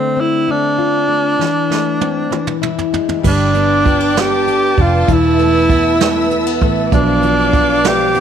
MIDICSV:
0, 0, Header, 1, 7, 480
1, 0, Start_track
1, 0, Tempo, 613497
1, 1101, Time_signature, 6, 3, 24, 8
1, 6417, End_track
2, 0, Start_track
2, 0, Title_t, "String section"
2, 0, Program_c, 0, 48
2, 2537, Note_on_c, 0, 79, 60
2, 2537, Note_on_c, 0, 86, 73
2, 2539, Note_on_c, 0, 71, 64
2, 2539, Note_on_c, 0, 81, 60
2, 3964, Note_off_c, 0, 79, 0
2, 3964, Note_off_c, 0, 86, 0
2, 3971, Note_on_c, 0, 88, 79
2, 3977, Note_on_c, 0, 76, 67
2, 5389, Note_off_c, 0, 81, 0
2, 5400, Note_off_c, 0, 88, 0
2, 5403, Note_off_c, 0, 76, 0
2, 5416, Note_on_c, 0, 74, 69
2, 5416, Note_on_c, 0, 77, 68
2, 5418, Note_on_c, 0, 86, 82
2, 6417, Note_off_c, 0, 71, 0
2, 6417, Note_off_c, 0, 74, 0
2, 6417, Note_off_c, 0, 77, 0
2, 6417, Note_off_c, 0, 86, 0
2, 6417, End_track
3, 0, Start_track
3, 0, Title_t, "Tenor saxophone"
3, 0, Program_c, 1, 66
3, 0, Note_on_c, 1, 60, 76
3, 160, Note_on_c, 1, 64, 84
3, 172, Note_off_c, 1, 60, 0
3, 402, Note_on_c, 1, 62, 84
3, 413, Note_off_c, 1, 64, 0
3, 2071, Note_off_c, 1, 62, 0
3, 2562, Note_on_c, 1, 62, 83
3, 3285, Note_on_c, 1, 67, 91
3, 3297, Note_off_c, 1, 62, 0
3, 3768, Note_on_c, 1, 65, 79
3, 3779, Note_off_c, 1, 67, 0
3, 4011, Note_on_c, 1, 64, 88
3, 4023, Note_off_c, 1, 65, 0
3, 5195, Note_off_c, 1, 64, 0
3, 5434, Note_on_c, 1, 62, 90
3, 6160, Note_on_c, 1, 67, 107
3, 6171, Note_off_c, 1, 62, 0
3, 6417, Note_off_c, 1, 67, 0
3, 6417, End_track
4, 0, Start_track
4, 0, Title_t, "Steel-string acoustic guitar"
4, 0, Program_c, 2, 25
4, 2543, Note_on_c, 2, 55, 68
4, 2783, Note_on_c, 2, 59, 50
4, 3022, Note_on_c, 2, 62, 48
4, 3258, Note_off_c, 2, 59, 0
4, 3261, Note_on_c, 2, 59, 54
4, 3500, Note_on_c, 2, 69, 57
4, 3733, Note_off_c, 2, 62, 0
4, 3742, Note_on_c, 2, 62, 55
4, 3977, Note_off_c, 2, 55, 0
4, 3980, Note_on_c, 2, 52, 73
4, 4028, Note_off_c, 2, 69, 0
4, 4029, Note_off_c, 2, 62, 0
4, 4218, Note_off_c, 2, 59, 0
4, 4221, Note_on_c, 2, 59, 49
4, 4460, Note_on_c, 2, 64, 51
4, 4699, Note_off_c, 2, 59, 0
4, 4702, Note_on_c, 2, 59, 57
4, 4940, Note_on_c, 2, 69, 63
4, 5172, Note_off_c, 2, 64, 0
4, 5181, Note_on_c, 2, 64, 56
4, 5417, Note_off_c, 2, 52, 0
4, 5421, Note_on_c, 2, 53, 77
4, 5467, Note_off_c, 2, 69, 0
4, 5468, Note_off_c, 2, 64, 0
4, 5653, Note_off_c, 2, 53, 0
4, 5662, Note_on_c, 2, 53, 54
4, 5686, Note_off_c, 2, 59, 0
4, 5899, Note_on_c, 2, 59, 55
4, 6132, Note_off_c, 2, 53, 0
4, 6141, Note_on_c, 2, 53, 59
4, 6381, Note_on_c, 2, 62, 66
4, 6417, Note_off_c, 2, 53, 0
4, 6417, Note_off_c, 2, 59, 0
4, 6417, Note_off_c, 2, 62, 0
4, 6417, End_track
5, 0, Start_track
5, 0, Title_t, "Steel-string acoustic guitar"
5, 0, Program_c, 3, 25
5, 0, Note_on_c, 3, 50, 68
5, 0, Note_on_c, 3, 57, 50
5, 129, Note_on_c, 3, 60, 49
5, 365, Note_off_c, 3, 57, 0
5, 374, Note_on_c, 3, 57, 53
5, 613, Note_on_c, 3, 65, 52
5, 836, Note_off_c, 3, 57, 0
5, 846, Note_on_c, 3, 57, 49
5, 1084, Note_off_c, 3, 50, 0
5, 1087, Note_on_c, 3, 52, 67
5, 1141, Note_off_c, 3, 57, 0
5, 1143, Note_off_c, 3, 60, 0
5, 1145, Note_off_c, 3, 65, 0
5, 1331, Note_on_c, 3, 57, 48
5, 1572, Note_on_c, 3, 60, 46
5, 1795, Note_off_c, 3, 52, 0
5, 1804, Note_on_c, 3, 52, 62
5, 1864, Note_off_c, 3, 57, 0
5, 1864, Note_off_c, 3, 60, 0
5, 2047, Note_on_c, 3, 64, 49
5, 2291, Note_on_c, 3, 56, 46
5, 2527, Note_off_c, 3, 52, 0
5, 2530, Note_on_c, 3, 55, 64
5, 2535, Note_on_c, 3, 71, 53
5, 2582, Note_off_c, 3, 64, 0
5, 2584, Note_off_c, 3, 56, 0
5, 2770, Note_on_c, 3, 62, 50
5, 3006, Note_on_c, 3, 65, 50
5, 3134, Note_off_c, 3, 65, 0
5, 3134, Note_on_c, 3, 67, 43
5, 3241, Note_off_c, 3, 62, 0
5, 3250, Note_on_c, 3, 62, 51
5, 3482, Note_off_c, 3, 67, 0
5, 3492, Note_on_c, 3, 67, 50
5, 3729, Note_off_c, 3, 62, 0
5, 3738, Note_on_c, 3, 62, 52
5, 3970, Note_off_c, 3, 55, 0
5, 3973, Note_on_c, 3, 52, 66
5, 3974, Note_off_c, 3, 67, 0
5, 3977, Note_on_c, 3, 64, 55
5, 4027, Note_off_c, 3, 62, 0
5, 4217, Note_on_c, 3, 57, 53
5, 4241, Note_off_c, 3, 71, 0
5, 4460, Note_on_c, 3, 59, 50
5, 4686, Note_off_c, 3, 57, 0
5, 4696, Note_on_c, 3, 57, 56
5, 4928, Note_off_c, 3, 57, 0
5, 4935, Note_off_c, 3, 59, 0
5, 4938, Note_on_c, 3, 57, 55
5, 5060, Note_off_c, 3, 57, 0
5, 5060, Note_on_c, 3, 59, 44
5, 5179, Note_on_c, 3, 57, 52
5, 5416, Note_off_c, 3, 52, 0
5, 5418, Note_off_c, 3, 64, 0
5, 5420, Note_on_c, 3, 47, 74
5, 5427, Note_on_c, 3, 62, 59
5, 5467, Note_off_c, 3, 57, 0
5, 5467, Note_off_c, 3, 59, 0
5, 5658, Note_on_c, 3, 53, 57
5, 5894, Note_on_c, 3, 59, 54
5, 6124, Note_off_c, 3, 53, 0
5, 6133, Note_on_c, 3, 53, 55
5, 6372, Note_off_c, 3, 59, 0
5, 6375, Note_on_c, 3, 59, 57
5, 6417, Note_off_c, 3, 47, 0
5, 6417, Note_off_c, 3, 53, 0
5, 6417, Note_off_c, 3, 59, 0
5, 6417, Note_off_c, 3, 62, 0
5, 6417, End_track
6, 0, Start_track
6, 0, Title_t, "Fingered electric bass"
6, 0, Program_c, 4, 33
6, 2537, Note_on_c, 4, 31, 79
6, 3707, Note_off_c, 4, 31, 0
6, 3740, Note_on_c, 4, 29, 79
6, 3966, Note_off_c, 4, 29, 0
6, 3978, Note_on_c, 4, 28, 80
6, 5175, Note_off_c, 4, 28, 0
6, 5175, Note_on_c, 4, 33, 82
6, 5402, Note_off_c, 4, 33, 0
6, 5416, Note_on_c, 4, 35, 91
6, 6417, Note_off_c, 4, 35, 0
6, 6417, End_track
7, 0, Start_track
7, 0, Title_t, "Drums"
7, 1103, Note_on_c, 9, 38, 39
7, 1181, Note_off_c, 9, 38, 0
7, 1342, Note_on_c, 9, 38, 51
7, 1420, Note_off_c, 9, 38, 0
7, 1575, Note_on_c, 9, 48, 58
7, 1653, Note_off_c, 9, 48, 0
7, 1816, Note_on_c, 9, 47, 67
7, 1894, Note_off_c, 9, 47, 0
7, 1933, Note_on_c, 9, 45, 63
7, 2011, Note_off_c, 9, 45, 0
7, 2056, Note_on_c, 9, 45, 75
7, 2135, Note_off_c, 9, 45, 0
7, 2179, Note_on_c, 9, 43, 64
7, 2257, Note_off_c, 9, 43, 0
7, 2298, Note_on_c, 9, 43, 75
7, 2376, Note_off_c, 9, 43, 0
7, 2416, Note_on_c, 9, 43, 70
7, 2495, Note_off_c, 9, 43, 0
7, 2536, Note_on_c, 9, 49, 70
7, 2538, Note_on_c, 9, 36, 81
7, 2615, Note_off_c, 9, 49, 0
7, 2616, Note_off_c, 9, 36, 0
7, 2773, Note_on_c, 9, 42, 44
7, 2851, Note_off_c, 9, 42, 0
7, 3018, Note_on_c, 9, 36, 76
7, 3024, Note_on_c, 9, 42, 39
7, 3096, Note_off_c, 9, 36, 0
7, 3102, Note_off_c, 9, 42, 0
7, 3260, Note_on_c, 9, 42, 78
7, 3264, Note_on_c, 9, 38, 95
7, 3339, Note_off_c, 9, 42, 0
7, 3342, Note_off_c, 9, 38, 0
7, 3501, Note_on_c, 9, 42, 42
7, 3579, Note_off_c, 9, 42, 0
7, 3737, Note_on_c, 9, 42, 38
7, 3738, Note_on_c, 9, 36, 68
7, 3816, Note_off_c, 9, 42, 0
7, 3817, Note_off_c, 9, 36, 0
7, 3976, Note_on_c, 9, 42, 65
7, 3978, Note_on_c, 9, 36, 92
7, 4054, Note_off_c, 9, 42, 0
7, 4056, Note_off_c, 9, 36, 0
7, 4216, Note_on_c, 9, 42, 44
7, 4294, Note_off_c, 9, 42, 0
7, 4457, Note_on_c, 9, 36, 76
7, 4460, Note_on_c, 9, 42, 41
7, 4535, Note_off_c, 9, 36, 0
7, 4538, Note_off_c, 9, 42, 0
7, 4699, Note_on_c, 9, 42, 84
7, 4702, Note_on_c, 9, 38, 97
7, 4777, Note_off_c, 9, 42, 0
7, 4780, Note_off_c, 9, 38, 0
7, 4935, Note_on_c, 9, 42, 48
7, 5014, Note_off_c, 9, 42, 0
7, 5174, Note_on_c, 9, 42, 37
7, 5176, Note_on_c, 9, 36, 73
7, 5252, Note_off_c, 9, 42, 0
7, 5254, Note_off_c, 9, 36, 0
7, 5414, Note_on_c, 9, 42, 67
7, 5416, Note_on_c, 9, 36, 92
7, 5492, Note_off_c, 9, 42, 0
7, 5495, Note_off_c, 9, 36, 0
7, 5653, Note_on_c, 9, 42, 49
7, 5731, Note_off_c, 9, 42, 0
7, 5894, Note_on_c, 9, 42, 41
7, 5895, Note_on_c, 9, 36, 81
7, 5973, Note_off_c, 9, 36, 0
7, 5973, Note_off_c, 9, 42, 0
7, 6137, Note_on_c, 9, 42, 82
7, 6140, Note_on_c, 9, 38, 100
7, 6215, Note_off_c, 9, 42, 0
7, 6218, Note_off_c, 9, 38, 0
7, 6372, Note_on_c, 9, 42, 47
7, 6417, Note_off_c, 9, 42, 0
7, 6417, End_track
0, 0, End_of_file